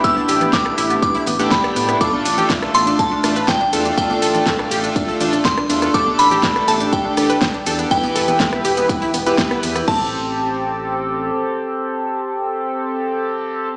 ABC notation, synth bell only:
X:1
M:4/4
L:1/8
Q:1/4=122
K:Am
V:1 name="Synth bell"
e'2 d'2 d'2 b2 | d'2 z c' a2 g2 | g4 z2 c'2 | d' b2 a g3 z |
g6 z2 | a8- | a8 |]